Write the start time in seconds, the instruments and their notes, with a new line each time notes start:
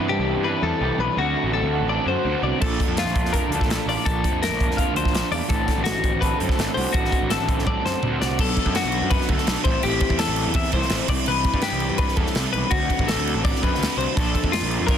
Already playing: overdriven electric guitar C3 C4 E4, clean electric guitar E3 B3
0.00 picked electric bass G2
0.08 overdriven electric guitar E3 G3 C4 E4, clean electric guitar D4 G4
0.19 picked electric bass C2
0.29 clean electric guitar E4
0.36 picked electric bass G2
0.44 overdriven electric guitar E3 G3 C4, clean electric guitar D4 B4
0.49 overdriven electric guitar E4
0.62 picked electric bass E2, overdriven electric guitar C4 E4, clean electric guitar A4
0.67 overdriven electric guitar G3
0.81 picked electric bass C2, overdriven electric guitar C3 E3 G3 C4 E4, clean electric guitar G4
0.99 picked electric bass B1, clean electric guitar C3 B4, overdriven electric guitar C4 E4
1.04 overdriven electric guitar G3
1.17 picked electric bass D2, overdriven electric guitar D3 A3 C4, clean electric guitar D3 F#4
1.22 overdriven electric guitar F#4
1.37 clean electric guitar A3
1.44 picked electric bass A1
1.53 overdriven electric guitar D3 A3 C4, clean electric guitar C4 A4
1.58 overdriven electric guitar F#4
1.62 picked electric bass D2
1.73 clean electric guitar F#4
1.81 picked electric bass A1
1.89 overdriven electric guitar D3 A3 C4 F#4, clean electric guitar A4 D5
2.06 picked electric bass F#2, overdriven electric guitar F#4, clean electric guitar F#4 C5
2.10 overdriven electric guitar A3 C4
2.25 picked electric bass D2, clean electric guitar C3, overdriven electric guitar D3 A3 C4
2.29 overdriven electric guitar F#4
2.42 picked electric bass C2, clean electric guitar B2 D5, overdriven electric guitar C4 F#4
2.48 overdriven electric guitar A3
2.61 picked electric bass A#1, clean electric guitar A#2 A4, overdriven electric guitar A#2 F3 A#3 D4, kick, crash
2.65 overdriven electric guitar F4
2.80 clean electric guitar D3, kick, closed hi-hat
2.88 picked electric bass F2
2.97 overdriven electric guitar F3 A#3 D4, clean electric guitar A3 F4, snare, closed hi-hat
3.02 picked electric bass A#1, overdriven electric guitar F4
3.08 snare
3.15 clean electric guitar D4, kick, closed hi-hat
3.23 picked electric bass F2, snare
3.33 overdriven electric guitar F3 A#3 D4 F4, clean electric guitar F4 A#4, kick, closed hi-hat
3.49 picked electric bass D2, clean electric guitar D4 A4, overdriven electric guitar F4, closed hi-hat
3.54 overdriven electric guitar A#3 D4
3.61 kick, snare
3.68 picked electric bass A#1, overdriven electric guitar A#2 F3 A#3, snare, closed hi-hat
3.73 overdriven electric guitar D4 F4
3.86 picked electric bass A1, overdriven electric guitar F4, clean electric guitar F4 D5, open hi-hat
3.91 overdriven electric guitar A#3 D4
4.05 picked electric bass A#1, overdriven electric guitar A#2 F3 A#3 D4 F4, clean electric guitar A#2 A4, kick, closed hi-hat
4.24 clean electric guitar D3, kick, closed hi-hat
4.32 picked electric bass F2
4.42 overdriven electric guitar F3 A#3 D4, clean electric guitar A3 A#4, snare, closed hi-hat
4.46 picked electric bass A#1, overdriven electric guitar F4
4.53 snare
4.60 clean electric guitar D4, kick, closed hi-hat
4.68 picked electric bass F2, snare
4.77 overdriven electric guitar F3 A#3 D4, clean electric guitar F4 F5, kick, closed hi-hat
4.82 overdriven electric guitar F4
4.93 picked electric bass D2, overdriven electric guitar D4 F4, clean electric guitar C5, closed hi-hat
4.98 overdriven electric guitar A#3, clean electric guitar D4
5.05 kick, snare
5.12 picked electric bass A#1, overdriven electric guitar A#2 F3 A#3 D4, snare, closed hi-hat
5.17 overdriven electric guitar F4
5.31 picked electric bass E2, overdriven electric guitar A#3 D4 F4, clean electric guitar F4 D5, open hi-hat
5.48 picked electric bass A1, overdriven electric guitar A2 D3 A3 C4 F#4, clean electric guitar A2 A4, kick, closed hi-hat
5.68 clean electric guitar D3, kick, snare, closed hi-hat
5.76 picked electric bass A1
5.84 overdriven electric guitar D3 A3 C4, clean electric guitar A3 F#4, snare, closed hi-hat
5.88 overdriven electric guitar F#4
5.95 picked electric bass A1
6.04 clean electric guitar C4, kick, closed hi-hat
6.14 picked electric bass A1
6.21 overdriven electric guitar D3 A3 C4 F#4, clean electric guitar A4 B4, kick, closed hi-hat
6.38 picked electric bass F#2, overdriven electric guitar A3 C4 F#4, clean electric guitar A4, closed hi-hat
6.43 clean electric guitar C4
6.49 kick, snare
6.57 picked electric bass A1, overdriven electric guitar A2 D3 A3 C4 F#4, clean electric guitar A3, snare, closed hi-hat
6.74 picked electric bass C2, overdriven electric guitar A3 C4 F#4, clean electric guitar F#4 C5, open hi-hat
6.93 picked electric bass A1, overdriven electric guitar A2 D3 A3 C4, clean electric guitar A2 F#4, kick, closed hi-hat
6.97 overdriven electric guitar F#4
7.05 snare
7.12 clean electric guitar D3, kick, closed hi-hat
7.21 picked electric bass A1
7.29 overdriven electric guitar D3 A3 C4 F#4, clean electric guitar A3 A4, snare, closed hi-hat
7.40 picked electric bass A1
7.49 clean electric guitar C4, kick, closed hi-hat
7.58 picked electric bass A1, snare
7.66 overdriven electric guitar D3 A3 C4 F#4, clean electric guitar A4 D5, kick, high tom
7.85 picked electric bass F#2, clean electric guitar C4 C5, overdriven electric guitar C4 F#4, snare
7.89 overdriven electric guitar A3
8.03 picked electric bass D2, overdriven electric guitar A2 D3 A3 C4, clean electric guitar G3, mid tom
8.07 overdriven electric guitar F#4
8.13 clean electric guitar A3
8.21 picked electric bass C2, overdriven electric guitar A3 C4 F#4, clean electric guitar F#4 D5, snare
8.39 picked electric bass B1, overdriven electric guitar B2 F#3 B3 D4, clean electric guitar A4, kick, crash
8.43 overdriven electric guitar F#4
8.57 kick, crash
8.65 picked electric bass F#2, kick
8.75 overdriven electric guitar F#3 B3 D4 F#4, clean electric guitar F#4, snare, crash
8.83 picked electric bass B1
8.92 crash
9.02 picked electric bass F#2
9.10 overdriven electric guitar F#3 B3 D4 F#4, clean electric guitar B4, kick, crash
9.21 snare
9.29 picked electric bass D2, overdriven electric guitar B3 D4 F#4, clean electric guitar A4, kick, crash
9.38 snare
9.47 picked electric bass B1, overdriven electric guitar B2 F#3 B3 D4 F#4, snare, crash
9.64 picked electric bass A1, overdriven electric guitar A2 E3 A3 C4 E4, clean electric guitar C5, kick, crash
9.83 picked electric bass A1, overdriven electric guitar A2 E3 A3 C4 E4, clean electric guitar G4, crash
10.00 kick, crash
10.09 picked electric bass E2, kick
10.18 overdriven electric guitar E3 A3 C4 E4, clean electric guitar A4, snare, crash
10.27 picked electric bass A1
10.36 crash
10.46 picked electric bass E2
10.54 overdriven electric guitar E3 A3 C4, clean electric guitar E5, kick, crash
10.58 overdriven electric guitar E4
10.65 snare
10.72 picked electric bass C2, overdriven electric guitar C4 E4, clean electric guitar C5, kick, crash
10.76 overdriven electric guitar A3
10.82 snare
10.90 picked electric bass A1, overdriven electric guitar A2 E3 A3 C4, snare, crash
10.94 overdriven electric guitar E4
11.08 picked electric bass C2, overdriven electric guitar E3 G3 C4 E4, clean electric guitar D5, kick, crash
11.12 overdriven electric guitar C3
11.26 picked electric bass C2, overdriven electric guitar C3 E3 G3 C4 E4, clean electric guitar B4, crash
11.44 kick, crash
11.54 picked electric bass G2, kick
11.62 overdriven electric guitar E3 G3 C4 E4, clean electric guitar G4, snare, crash
11.72 picked electric bass C2
11.80 crash
11.90 picked electric bass G2
11.98 overdriven electric guitar E3 G3 C4 E4, clean electric guitar B4, kick, crash
12.09 snare
12.16 picked electric bass E2, overdriven electric guitar C4 E4, clean electric guitar A4, kick, crash
12.20 overdriven electric guitar G3
12.27 snare
12.35 picked electric bass C2, overdriven electric guitar C3 E3 G3 C4 E4, snare, crash
12.53 picked electric bass B1, overdriven electric guitar G3 C4 E4, clean electric guitar B4, crash
12.70 picked electric bass D2, overdriven electric guitar D3 A3 C4 F#4, clean electric guitar F#4, kick, crash
12.90 kick, crash
12.99 picked electric bass A1, kick
13.08 overdriven electric guitar D3 A3 C4, clean electric guitar A4, snare, crash
13.12 overdriven electric guitar F#4
13.16 picked electric bass D2
13.27 crash
13.35 picked electric bass A1
13.43 overdriven electric guitar D3 A3 C4 F#4, clean electric guitar D5, kick, crash
13.56 snare
13.62 picked electric bass F#2, overdriven electric guitar A3 C4 F#4, clean electric guitar B4, kick, crash
13.75 picked electric bass D2, snare
13.81 overdriven electric guitar D3 A3 C4 F#4, snare, crash
13.97 picked electric bass C2, overdriven electric guitar C4 F#4, clean electric guitar C5, crash
14.01 overdriven electric guitar A3
14.16 picked electric bass A#1, overdriven electric guitar A#2 F3 A#3 D4 F4, clean electric guitar A4, kick, crash
14.35 kick, crash
14.44 picked electric bass F2, kick
14.52 overdriven electric guitar F3 A#3 D4 F4, clean electric guitar F4, snare, crash
14.61 picked electric bass A#1
14.71 crash
14.80 picked electric bass F2
14.87 overdriven electric guitar F3 A#3 D4, clean electric guitar A#4, kick, crash
14.91 overdriven electric guitar F4